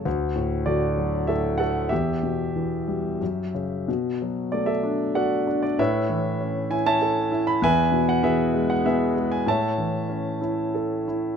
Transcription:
<<
  \new Staff \with { instrumentName = "Grand piano" } { \time 3/4 \key d \major \tempo 4 = 96 << { r4 d''4 e''8 fis''8 | e''2~ e''8 r8 | \key b \dorian r4 d''16 e''8. fis''8. d''16 | e''4. gis''16 a''4 b''16 |
gis''8. fis''16 e''8. fis''16 e''8. gis''16 | a''4. r4. | } \\ { r4 fis'4 a'8 a'8 | g'2~ g'8 r8 | r4 r16 a'8. <a' d''>4 | <b' cis''>4. r16 <cis'' e''>4~ <cis'' e''>16 |
<b' e''>4 <gis' b'>4 <gis' b'>4 | <cis'' e''>4. r4. | } >> }
  \new Staff \with { instrumentName = "Grand piano" } { \clef bass \time 3/4 \key d \major d,8 a,8 d8 fis8 a,4 | e,8 b,8 e8 g8 fis,8 cis8 | \key b \dorian b,8 fis8 a8 d'8 fis'8 d'8 | a,8 e8 cis'8 e'8 a'8 e'8 |
e,8 b,8 e8 gis8 b8 gis8 | a,8 e8 cis'8 e'8 a'8 e'8 | }
>>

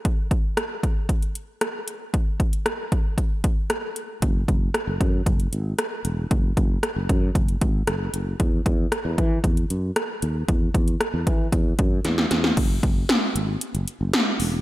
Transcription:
<<
  \new Staff \with { instrumentName = "Fretless electric bass" } { \clef bass \time 4/4 \key fis \mixolydian \tempo 4 = 115 r1 | r1 | fis,,8 fis,,8 r16 fis,,16 fis,8 fis,,8 gis,,8 r8 e,,8 | fis,,8 fis,,8 r16 fis,,16 fis,8 fis,,8 gis,,8 fis,,8 fis,,8 |
e,8 e,8 r16 e,16 e8 e,8 fis,8 r8 dis,8 | e,8 e,8 r16 e,16 e8 e,8 fis,8 e,8 e,8 | fis,,8 fis,,8 r8 gis,,8 r16 fis,,16 r16 fis,,16 r8 e,,8 | }
  \new DrumStaff \with { instrumentName = "Drums" } \drummode { \time 4/4 <hh bd>8 <hh bd>8 <hh ss>8 <hh bd>8 <hh bd>16 hh16 hh8 <hh ss>8 hh8 | <hh bd>8 <hh bd>16 hh16 <hh ss>8 <hh bd>8 <hh bd>8 <hh bd>8 <hh ss>8 hh8 | <hh bd>8 <hh bd>8 <hh ss>8 <hh bd>8 <hh bd>16 hh16 hh8 <hh ss>8 hh8 | <hh bd>8 <hh bd>8 <hh ss>8 <hh bd>8 <hh bd>16 hh16 <hh bd>8 <hh ss>8 hh8 |
<hh bd>8 <hh bd>8 <hh ss>8 <hh bd>8 <hh bd>16 hh16 hh8 <hh ss>8 hh8 | <hh bd>8 <hh bd>16 hh16 <hh ss>8 <hh bd>8 <hh bd>8 <hh bd>8 <hh sn>16 sn16 <hh sn>16 sn16 | <cymc hh bd>8 <hh bd>8 <hh sn>8 hh8 hh16 hh16 hh8 <hh sn>8 hho8 | }
>>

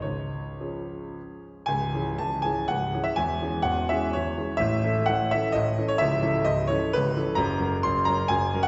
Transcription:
<<
  \new Staff \with { instrumentName = "Grand piano" } { \time 3/4 \key des \major \tempo 4 = 126 des''2~ des''8 r8 | \key cis \minor gis''4 a''8 gis''8 fis''8. e''16 | gis''4 fis''8 e''8 cis''4 | e''4 fis''8 e''8 dis''8. cis''16 |
e''4 dis''8 cis''8 b'4 | \key ges \lydian bes''4 c'''8 bes''8 aes''8. ges''16 | }
  \new Staff \with { instrumentName = "Grand piano" } { \clef bass \time 3/4 \key des \major des,4 <f des' aes'>2 | \key cis \minor <cis,, cis,>8 <e cis' gis'>8 <cis,, cis,>8 <e cis' gis'>8 <cis,, cis,>8 <e cis' gis'>8 | <e,, e,>8 <e cis' gis'>8 <e,, e,>8 <e cis' gis'>8 <e,, e,>8 <e cis' gis'>8 | <a,, a,>8 <e cis' a'>8 <a,, a,>8 <e cis' a'>8 <a,, a,>8 <e cis' a'>8 |
<cis,, cis,>8 <e cis' a'>8 <cis,, cis,>8 <e cis' a'>8 <cis,, cis,>8 <e cis' a'>8 | \key ges \lydian <ges,, ges,>8 <ges des' bes'>8 <ges,, ges,>8 <ges des' bes'>8 <ges,, ges,>8 <ges des' bes'>8 | }
>>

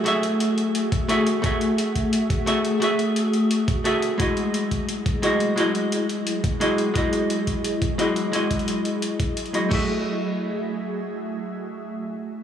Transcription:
<<
  \new Staff \with { instrumentName = "Ambient pad" } { \time 4/4 \key fis \dorian \tempo 4 = 174 << { e''1 | dis'''1~ | dis'''1 | dis''1~ |
dis''1~ | dis''1~ | dis''1 | <a fis' gis' e''>1~ |
<a fis' gis' e''>1 | } \\ { <a fis' gis'>1~ | <a fis' gis'>1~ | <a fis' gis'>1 | <fis e' gis'>1~ |
<fis e' gis'>1~ | <fis e' gis'>1~ | <fis e' gis'>1 | r1 |
r1 | } >> }
  \new Staff \with { instrumentName = "Hollow-body jazz guitar" } { \time 4/4 \key fis \dorian <a fis' gis' e''>2. <a fis' gis' e''>4 | <a fis' gis' e''>2. <a fis' gis' e''>4 | <a fis' gis' e''>2. <a fis' gis' e''>4 | <gis e' fis' dis''>2. <gis e' fis' dis''>4 |
<gis e' fis' dis''>2. <gis e' fis' dis''>4 | <gis e' fis' dis''>2. <gis e' fis' dis''>4 | <gis e' fis' dis''>2. r8 <gis e' fis' dis''>8 | <a fis' gis' e''>1~ |
<a fis' gis' e''>1 | }
  \new DrumStaff \with { instrumentName = "Drums" } \drummode { \time 4/4 hh8 hh8 hh8 hh8 hh8 <hh bd>8 hh8 hh8 | <hh bd>8 hh8 hh8 <hh bd>8 hh8 <hh bd>8 hh8 hh8 | hh8 hh8 hh8 hh8 hh8 <hh bd>8 hh8 hh8 | <hh bd>8 hh8 hh8 <hh bd>8 hh8 <hh bd>8 hh8 hh8 |
hh8 hh8 hh8 hh8 hh8 <hh bd>8 hh8 hh8 | <hh bd>8 hh8 hh8 <hh bd>8 hh8 <hh bd>8 hh8 hh8 | hh8 <hh bd>16 hh16 hh8 hh8 hh8 <hh bd>8 hh16 hh16 hh8 | <cymc bd>4 r4 r4 r4 |
r4 r4 r4 r4 | }
>>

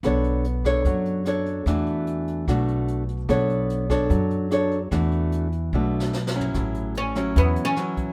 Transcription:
<<
  \new Staff \with { instrumentName = "Nylon-string guitar" } { \time 4/4 \key a \major \tempo 4 = 147 << { <d' a' cis''>4 r8 <d' a' cis''>4. <d' a' cis''>4 | <a d' fis'>2 <a d' fis'>4. r8 | <d' a' cis''>4. <d' a' cis''>4. <d' a' cis''>8 r8 | <a d' fis'>4. r8 <a d' fis'>4 r8 <fis cis' e'>8~ |
<fis cis' e'>4 r8 <fis cis' e'>4. <fis cis' e'>4 | } \\ { b2 fis2 | e2 b,2 | b2 fis2 | e2 b,2 |
a,2 e2 | } >> }
  \new Staff \with { instrumentName = "Oud" } { \time 4/4 \key a \major r1 | r1 | r1 | r1 |
r4 cis'4 \tuplet 3/2 { b4 cis'8~ } cis'4 | }
  \new Staff \with { instrumentName = "Upright bass" } { \clef bass \time 4/4 \key a \major b,,2 fis,2 | e,2 b,,2 | b,,2 fis,2 | e,2 b,,2 |
a,,2 e,8 r4. | }
  \new DrumStaff \with { instrumentName = "Drums" } \drummode { \time 4/4 <hh bd ss>8 hh8 hh8 <hh bd ss>8 <hh bd>8 hh8 <hh ss>8 hh8 | <hh bd ss>8 hh8 hh8 hh8 <hh bd ss>8 hh8 hh8 hh8 | <hh bd ss>8 hh8 hh8 <hh bd ss>8 <hh bd>8 hh8 <hh ss>8 hh8 | <hh bd ss>8 hh8 hh8 hh8 \tuplet 3/2 { bd8 r8 sn8 sn8 sn8 tomfh8 } |
<hh bd ss>8 hh8 hh8 <hh ss>8 <hh bd>8 hh8 <hh ss>8 <hh bd>8 | }
>>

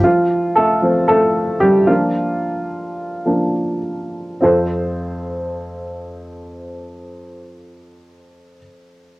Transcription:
<<
  \new Staff \with { instrumentName = "Upright piano" } { \time 4/4 \key f \major \tempo 4 = 100 <f f'>4 <a a'>4 <a a'>4 <g g'>8 f'8~ | f'2. r4 | <c' f' a' c''>1~ | <c' f' a' c''>1 | }
  \new Staff \with { instrumentName = "Upright piano" } { \time 4/4 \key f \major r4. <f a c'>2 <f bes d'>8~ | <f bes d'>4 r4 <f bes d'>8 r4. | f,1~ | f,1 | }
>>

